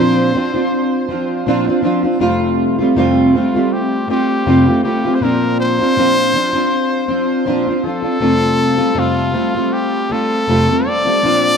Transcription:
Already playing: steel-string acoustic guitar A#2 F3 C4 D4 F4, trumpet C5
0.34 steel-string acoustic guitar F3 C4 D4 F4
0.54 steel-string acoustic guitar C4 D4 F4
1.08 steel-string acoustic guitar F3 C4 D4 F4
1.46 steel-string acoustic guitar A#2 F3 C4 D4 F4
1.67 steel-string acoustic guitar C4 D4 F4
1.82 steel-string acoustic guitar F3 C4 D4 F4
2.03 steel-string acoustic guitar C4 D4 F4
2.19 steel-string acoustic guitar F2 C3 G3 A3 C4 F4
2.79 steel-string acoustic guitar G3 A3 C4 F4
2.95 steel-string acoustic guitar F2 C3 G3 A3 C4 F4
3.35 steel-string acoustic guitar G3 A3 C4 F4, trumpet F4
3.54 steel-string acoustic guitar G3 A3 C4 F4
3.73 trumpet G4
4.07 steel-string acoustic guitar G3 A3 C4 F4, trumpet G4
4.46 steel-string acoustic guitar F2 C3 G3 A3 C4 F4
4.66 steel-string acoustic guitar G3 A3 C4 F4
4.83 steel-string acoustic guitar G3 A3 C4 F4, trumpet G4
5.05 steel-string acoustic guitar G3 A3 C4 F4
5.15 trumpet C5
5.21 steel-string acoustic guitar A#2 F3 C4 D4 F4, trumpet A#4
5.60 trumpet C5
5.79 steel-string acoustic guitar C4 D4 F4
5.97 steel-string acoustic guitar A#2 F3 C4 D4 F4
6.34 steel-string acoustic guitar F3 C4 D4 F4
6.53 steel-string acoustic guitar C4 D4 F4
7.08 steel-string acoustic guitar F3 C4 D4 F4
7.45 steel-string acoustic guitar A#2 F3 C4 D4 F4
7.67 steel-string acoustic guitar C4 D4 F4
7.84 steel-string acoustic guitar F3 C4 D4 F4, trumpet A4
8.02 steel-string acoustic guitar C4 D4 F4
8.20 steel-string acoustic guitar F2 C3 G3 A3 C4 F4
8.77 steel-string acoustic guitar G3 A3 C4 F4
8.94 steel-string acoustic guitar F2 C3 G3 A3 C4 F4
8.99 trumpet F4
9.33 steel-string acoustic guitar G3 A3 C4 F4
9.55 steel-string acoustic guitar G3 A3 C4 F4
9.73 trumpet G4
10.10 steel-string acoustic guitar G3 A3 C4 F4, trumpet A4
10.47 steel-string acoustic guitar F2 C3 G3 A3 C4 F4
10.69 steel-string acoustic guitar G3 A3 C4 F4
10.85 steel-string acoustic guitar G3 A3 C4 F4, trumpet D5
11.05 steel-string acoustic guitar G3 A3 C4 F4
11.22 steel-string acoustic guitar A#2 F3 C4 D4 F4

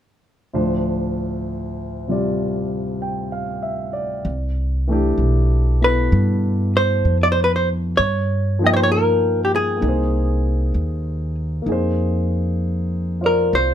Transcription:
0.53 grand piano D2 A2 F3 D4 C5
2.08 grand piano C3 G3 F4 D5
3.02 grand piano G5
3.32 grand piano F5
3.62 grand piano E5
3.93 grand piano D5
4.25 upright bass C2
4.88 grand piano E3 A3 D4
4.92 grand piano G4
5.18 upright bass B1
5.81 grand piano B2 E4 A4, hollow-body jazz guitar B4
6.12 upright bass G2
6.77 hollow-body jazz guitar C5
7.05 upright bass F2
7.23 hollow-body jazz guitar D5
7.32 hollow-body jazz guitar C5
7.44 hollow-body jazz guitar B4
7.56 hollow-body jazz guitar C5
7.97 upright bass G2, hollow-body jazz guitar C#5
8.59 grand piano F3 A#3 D#4
8.64 hollow-body jazz guitar D#5, grand piano G5
8.73 hollow-body jazz guitar C5 C#5
8.83 hollow-body jazz guitar C#5
8.92 hollow-body jazz guitar A#4
9.45 hollow-body jazz guitar G4
9.56 hollow-body jazz guitar G#4
9.77 grand piano A#3
9.81 upright bass C2, grand piano D#4 G#4
9.89 grand piano C5
10.74 upright bass D#2
11.62 grand piano A#3 D#4
11.66 upright bass F2, grand piano G#4
11.72 grand piano C5
13.21 grand piano F4 C5 D5
13.26 hollow-body jazz guitar A#4
13.53 upright bass C2, hollow-body jazz guitar C5

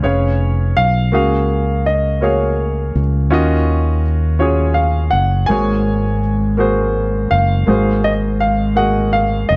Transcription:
0.02 fingered electric bass F1, grand piano C#4 G#4 B4 C#5 F5
0.77 fingered electric bass B1, grand piano F5
1.12 fingered electric bass C#2, grand piano C#3 A#3 F#4 G#4 F5
1.86 grand piano D#5
2.21 grand piano A#3 F#4 G#4 C#5 F5
2.95 fingered electric bass C#2
3.30 fingered electric bass D#2, grand piano D#3 C#4 F4 F#4 D#5
4.39 grand piano C#4 F4 F#4 G#4 C#5
4.74 grand piano F5
5.11 fingered electric bass F#1, grand piano F#5
5.46 fingered electric bass G#1, grand piano G#2 A#3 F#4 G#5
5.50 grand piano G#4 C#5
6.57 grand piano A#3 F#4 G#4 C5
7.31 fingered electric bass F#1, grand piano F5
7.66 fingered electric bass G#1, grand piano G#2 A#3 F#4 G#4 C5
8.04 grand piano D#5
8.40 grand piano F5
8.75 grand piano A#3 F#4 G#4 D#5 F#5
9.13 grand piano F5
9.49 fingered electric bass F1, grand piano D#5

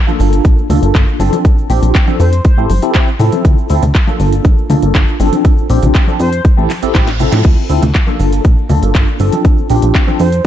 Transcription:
0.07 tine electric piano A#3 D4 F4 A4, high conga, shaker
0.19 analog synth bass G1, open hi-hat, shaker
0.33 closed hi-hat, shaker
0.44 analog synth bass A#1, kick, closed hi-hat, shaker
0.46 shaker
0.58 shaker
0.70 analog synth bass D2, tine electric piano A#3 D4 F4 A4, open hi-hat, high conga, low conga, shaker
0.82 analog synth bass G1, closed hi-hat, shaker
0.95 analog synth bass G1, kick, clap, closed hi-hat, shaker
1.08 shaker
1.20 analog synth bass G1, tine electric piano C4 D4 F4 A4, open hi-hat, shaker
1.33 closed hi-hat, high conga, shaker
1.45 kick, closed hi-hat, shaker
1.58 analog synth bass A#1, shaker
1.69 analog synth bass A#1, tine electric piano C4 D4 F4 G4, open hi-hat, shaker
1.83 analog synth bass A#1, closed hi-hat, shaker
1.95 kick, clap, closed hi-hat, shaker
2.07 tine electric piano C4 D4 F4 A4, high conga, shaker
2.19 analog synth bass F2, analog polysynth C5, open hi-hat, shaker
2.32 closed hi-hat, shaker
2.45 analog polysynth C5, kick, closed hi-hat, shaker
2.57 analog synth bass A1, tine electric piano C4 E4 G4 A4, shaker
2.70 analog synth bass G1, open hi-hat, high conga, shaker
2.82 tine electric piano C4 E4 G4 A4, closed hi-hat, shaker
2.94 tine electric piano C4 E4 G4 C5, kick, clap, closed hi-hat, shaker
3.08 shaker
3.19 analog synth bass A2, tine electric piano C4 E4 F4 A4, open hi-hat, low conga, shaker
3.32 closed hi-hat, high conga, shaker
3.45 analog synth bass D2, kick, closed hi-hat, shaker
3.58 shaker
3.69 analog synth bass D2, tine electric piano C4 E4 F4 A4, open hi-hat, shaker
3.82 analog synth bass D2, closed hi-hat, low conga, shaker
3.94 kick, clap, closed hi-hat, shaker
4.07 tine electric piano A#3 D4 F4 A4, high conga, shaker
4.20 analog synth bass G1, open hi-hat, shaker
4.33 closed hi-hat, shaker
4.45 analog synth bass A#1, kick, closed hi-hat, shaker
4.58 shaker
4.70 analog synth bass D2, tine electric piano A#3 D4 F4 A4, open hi-hat, high conga, low conga, shaker
4.83 analog synth bass G1, closed hi-hat, shaker
4.95 analog synth bass G1, kick, clap, closed hi-hat, shaker
5.08 shaker
5.20 analog synth bass G1, tine electric piano C4 D4 F4 A4, open hi-hat, shaker
5.33 closed hi-hat, high conga, shaker
5.45 kick, closed hi-hat, shaker
5.57 analog synth bass A#1, shaker
5.70 analog synth bass A#1, tine electric piano C4 D4 F4 G4, open hi-hat, shaker
5.83 analog synth bass A#1, closed hi-hat, low conga, shaker
5.95 kick, clap, closed hi-hat, shaker
6.07 tine electric piano C4 D4 F4 A4, high conga, shaker
6.20 analog synth bass F2, analog polysynth C5, open hi-hat, shaker
6.33 closed hi-hat, shaker
6.45 kick, closed hi-hat, reverse cymbal, shaker
6.57 analog synth bass A1, tine electric piano C4 E4 G4 A4, shaker
6.70 clap, open hi-hat, high conga, shaker
6.82 analog synth bass A1, tine electric piano C4 E4 G4 A4, closed hi-hat, shaker
6.95 analog synth bass A1, tine electric piano C4 E4 G4 C5, kick, snare, clap, closed hi-hat, shaker
7.07 snare, shaker
7.20 tine electric piano C4 E4 F4 A4, open hi-hat, low conga, shaker
7.32 analog synth bass A2, snare, closed hi-hat, high conga, shaker
7.45 analog synth bass D2, kick, closed hi-hat, crash, shaker
7.57 shaker
7.69 analog synth bass D2, tine electric piano C4 E4 F4 A4, open hi-hat, shaker
7.70 shaker
7.83 analog synth bass D2, closed hi-hat, low conga, shaker
7.95 kick, clap, closed hi-hat, shaker
8.07 tine electric piano A#3 D4 F4 A4, high conga, shaker
8.20 analog synth bass G1, open hi-hat, shaker
8.33 closed hi-hat, shaker
8.44 analog synth bass A#1, kick, closed hi-hat, shaker
8.58 shaker
8.69 analog synth bass D2, tine electric piano A#3 D4 F4 A4, open hi-hat, high conga, low conga, shaker
8.83 analog synth bass G1, closed hi-hat, shaker
8.95 analog synth bass G1, kick, clap, closed hi-hat, shaker
9.08 shaker
9.19 analog synth bass G1, tine electric piano C4 D4 F4 A4, open hi-hat, shaker
9.32 closed hi-hat, high conga, shaker
9.45 kick, closed hi-hat, shaker
9.58 analog synth bass A#1, shaker
9.70 analog synth bass A#1, tine electric piano C4 D4 F4 G4, open hi-hat, shaker
9.82 analog synth bass A#1, closed hi-hat, shaker
9.95 kick, clap, closed hi-hat, shaker
10.07 tine electric piano C4 D4 F4 A4, high conga, shaker
10.19 analog synth bass F2, analog polysynth C5, open hi-hat, shaker
10.32 closed hi-hat, shaker

